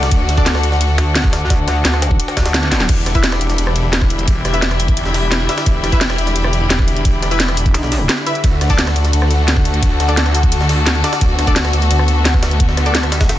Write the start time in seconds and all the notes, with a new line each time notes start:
Already playing: D2 D3 A3 D4 F#4 A4 F#5 A5
0.03 snare, ride
0.11 D2, kick, closed hi-hat, ride
0.29 snare, closed hi-hat, ride
0.37 D4 A4 D5, kick, ride
0.46 snare, closed hi-hat, ride
0.55 cross-stick, snare
0.63 closed hi-hat, ride
0.72 snare
0.81 closed hi-hat, ride
0.98 D2, closed hi-hat, ride
1.15 snare, closed hi-hat, ride
1.24 kick
1.33 snare, closed hi-hat, ride
1.50 kick, snare, closed hi-hat, ride
1.68 cross-stick, snare, closed hi-hat, ride
1.85 D2, snare, closed hi-hat, ride
1.94 cross-stick, ride
2.02 snare, open hi-hat, ride
2.11 kick
2.20 closed hi-hat, ride
2.28 snare
2.37 D2, kick, snare, closed hi-hat, ride
2.46 snare, ride
2.54 snare, closed hi-hat, ride
2.63 snare, ride
2.72 snare, closed hi-hat, ride
2.80 snare
2.89 E1 D3 G3 E4, kick, closed hi-hat, crash, ride
2.98 G4 E5
3.06 cross-stick, snare, closed hi-hat, ride
3.15 E4 B4 E5, kick, closed hi-hat, ride
3.24 snare, closed hi-hat, ride
3.32 cross-stick, snare, closed hi-hat
3.41 E1, closed hi-hat, ride
3.48 B5, snare, closed hi-hat
3.58 E1, closed hi-hat, ride
3.67 cross-stick
3.76 closed hi-hat, ride
3.93 snare, closed hi-hat, ride
4.02 kick, cross-stick
4.10 closed hi-hat, ride
4.19 closed hi-hat
4.28 kick, closed hi-hat, ride
4.45 cross-stick, snare, closed hi-hat, ride
4.54 E4 B4 E5, closed hi-hat
4.62 snare, closed hi-hat, ride
4.71 cross-stick, closed hi-hat, ride
4.80 open hi-hat, ride
4.88 kick, closed hi-hat
4.97 E1, closed hi-hat, ride
5.06 snare
5.14 snare, closed hi-hat, open hi-hat
5.32 snare, closed hi-hat, ride
5.40 ride
5.49 E4 B4 E5, snare, closed hi-hat, ride
5.58 snare, closed hi-hat, ride
5.66 E1, kick, closed hi-hat, ride
5.84 cross-stick, snare, closed hi-hat, ride
5.92 E4 B4 E5, kick, closed hi-hat, ride
6.01 snare, closed hi-hat, ride
6.10 cross-stick, snare, closed hi-hat
6.18 E1, closed hi-hat, ride
6.27 snare, closed hi-hat
6.36 E1, closed hi-hat, ride
6.44 cross-stick
6.53 closed hi-hat, ride
6.70 snare, closed hi-hat, ride
6.79 kick, cross-stick
6.88 closed hi-hat, ride
6.96 closed hi-hat
7.05 kick, closed hi-hat, ride
7.22 cross-stick, snare, closed hi-hat, ride
7.31 E4 B4 E5, closed hi-hat
7.40 snare, closed hi-hat, ride
7.48 cross-stick, closed hi-hat, ride
7.57 open hi-hat, ride
7.66 kick, closed hi-hat
7.74 B1, closed hi-hat, ride
7.83 snare
7.92 snare, closed hi-hat, open hi-hat
8.09 snare, closed hi-hat, ride
8.18 ride
8.26 E4 B4 E5, closed hi-hat, ride
8.35 closed hi-hat
8.44 D2 A3 D4 F#4, kick, closed hi-hat, ride
8.60 A4 F#5, cross-stick, snare, closed hi-hat, ride
8.70 D4 A4 D5, kick, closed hi-hat, ride
8.78 snare, closed hi-hat, ride
8.87 cross-stick, snare, closed hi-hat
8.91 A5
8.96 D2, closed hi-hat, ride
9.04 snare, closed hi-hat
9.13 D2, closed hi-hat, ride
9.22 cross-stick
9.31 closed hi-hat, ride
9.48 snare, closed hi-hat, ride
9.57 kick, cross-stick
9.65 closed hi-hat, ride
9.74 closed hi-hat
9.83 kick, closed hi-hat, ride
10.00 cross-stick, snare, closed hi-hat, ride
10.09 D4 A4 D5, closed hi-hat
10.17 snare, closed hi-hat, ride
10.26 cross-stick, closed hi-hat, ride
10.35 open hi-hat, ride
10.43 kick, closed hi-hat
10.52 D2, closed hi-hat, ride
10.61 snare
10.69 snare, closed hi-hat, open hi-hat
10.87 snare, closed hi-hat, ride
10.95 ride
11.04 D4 A4 D5, snare, closed hi-hat, ride
11.13 snare, closed hi-hat, ride
11.21 D2 B3, kick, closed hi-hat, ride
11.39 cross-stick, snare, closed hi-hat, ride
11.47 D4 A4 D5, kick, closed hi-hat, ride
11.56 snare, closed hi-hat, ride
11.65 cross-stick, snare, closed hi-hat
11.73 D2 E5, closed hi-hat, ride
11.82 snare, closed hi-hat
11.91 D2, closed hi-hat, ride
11.99 cross-stick
12.08 closed hi-hat, ride
12.25 snare, closed hi-hat, ride
12.34 kick, cross-stick
12.43 snare, closed hi-hat, ride
12.51 closed hi-hat
12.60 kick, closed hi-hat, ride
12.69 snare
12.77 cross-stick, snare, closed hi-hat, ride
12.86 D4 A4 D5, closed hi-hat
12.95 snare, closed hi-hat, ride
13.03 cross-stick, closed hi-hat, ride
13.12 snare, open hi-hat, ride
13.21 kick, snare, closed hi-hat, ride
13.29 E1, snare, closed hi-hat, ride